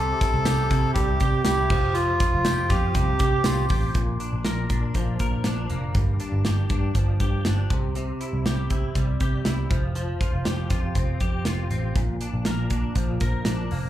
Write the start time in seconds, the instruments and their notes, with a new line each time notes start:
Already playing: picked electric bass C2, clean electric guitar C3 G4, melodica A4
0.21 clean electric guitar E4, kick, closed hi-hat, tambourine
0.34 picked electric bass C2
0.45 picked electric bass C2, clean electric guitar G4, snare, closed hi-hat, tambourine
0.70 picked electric bass C3, clean electric guitar E4, kick, closed hi-hat, tambourine
0.94 picked electric bass C2, clean electric guitar G3, melodica G4, kick, closed hi-hat
1.20 picked electric bass C3, clean electric guitar G4, kick, closed hi-hat, tambourine
1.44 picked electric bass C2, clean electric guitar E4, melodica G4, snare, closed hi-hat, tambourine
1.70 picked electric bass F1, clean electric guitar F3, kick, tambourine, crash
1.94 clean electric guitar F3, melodica F4, closed hi-hat, tambourine
2.19 clean electric guitar F4, kick, closed hi-hat, tambourine
2.33 picked electric bass F1
2.45 picked electric bass F1, clean electric guitar G4, snare, closed hi-hat, tambourine
2.69 picked electric bass F2, clean electric guitar F4, melodica G4, kick, snare, closed hi-hat, tambourine
2.95 picked electric bass C2, clean electric guitar C3, kick, closed hi-hat
3.19 picked electric bass C3, clean electric guitar G4, glockenspiel D6, kick, closed hi-hat
3.38 glockenspiel D6
3.44 picked electric bass C2, clean electric guitar F4, glockenspiel C6, snare, closed hi-hat, tambourine
3.69 picked electric bass A1, clean electric guitar G4, kick, open hi-hat, tambourine
3.94 picked electric bass A#1, clean electric guitar A#2, kick, closed hi-hat
4.20 clean electric guitar D4, closed hi-hat
4.33 picked electric bass A#1
4.45 picked electric bass A#1, clean electric guitar A#4, snare, closed hi-hat
4.70 picked electric bass A#2, clean electric guitar D4, kick, closed hi-hat
4.94 picked electric bass A#1, clean electric guitar F3, kick, closed hi-hat
5.19 picked electric bass A#2, clean electric guitar A#4, kick, closed hi-hat
5.44 picked electric bass A#1, clean electric guitar D4, snare, closed hi-hat
5.70 picked electric bass F1, clean electric guitar A#3, closed hi-hat
5.95 picked electric bass G1, clean electric guitar G2, kick, closed hi-hat
6.20 clean electric guitar D4, closed hi-hat
6.32 picked electric bass G1
6.45 picked electric bass G1, clean electric guitar G4, snare, closed hi-hat
6.69 picked electric bass G2, clean electric guitar D4, kick, closed hi-hat
6.95 picked electric bass G1, clean electric guitar F3, kick, closed hi-hat
7.20 picked electric bass G2, clean electric guitar G4, kick, closed hi-hat
7.45 picked electric bass G1, clean electric guitar D4, snare, closed hi-hat
7.70 picked electric bass C2, clean electric guitar C3, kick, closed hi-hat
7.95 clean electric guitar C3, closed hi-hat
8.21 clean electric guitar E4, closed hi-hat
8.33 picked electric bass C2
8.46 picked electric bass C2, clean electric guitar G4, snare, closed hi-hat
8.70 picked electric bass C3, clean electric guitar E4, kick, closed hi-hat
8.95 picked electric bass C2, clean electric guitar G3, kick, closed hi-hat
9.20 picked electric bass C3, clean electric guitar G4, kick, closed hi-hat
9.45 picked electric bass C2, clean electric guitar E4, snare, closed hi-hat
9.70 picked electric bass F1, clean electric guitar F3, kick, closed hi-hat
9.95 clean electric guitar F3, closed hi-hat
10.21 clean electric guitar F4, kick, closed hi-hat
10.33 picked electric bass F1
10.45 picked electric bass F1, clean electric guitar G4, snare, closed hi-hat
10.70 picked electric bass F2, clean electric guitar F4, kick, snare, closed hi-hat
10.95 picked electric bass F1, clean electric guitar C4, kick, closed hi-hat
11.20 picked electric bass F2, clean electric guitar G4, kick, closed hi-hat
11.45 picked electric bass F1, clean electric guitar F4, snare, closed hi-hat
11.71 picked electric bass A1, clean electric guitar C4, closed hi-hat
11.96 picked electric bass A#1, clean electric guitar A#2, kick, closed hi-hat
12.21 clean electric guitar D4, closed hi-hat
12.34 picked electric bass A#1
12.45 picked electric bass A#1, clean electric guitar A#4, snare, closed hi-hat
12.70 picked electric bass A#2, clean electric guitar D4, kick, closed hi-hat
12.95 picked electric bass A#1, clean electric guitar F3, kick, closed hi-hat
13.20 picked electric bass A#2, clean electric guitar A#4, kick, closed hi-hat
13.45 picked electric bass A#1, clean electric guitar D4, snare, closed hi-hat
13.71 picked electric bass F1, clean electric guitar A#3, open hi-hat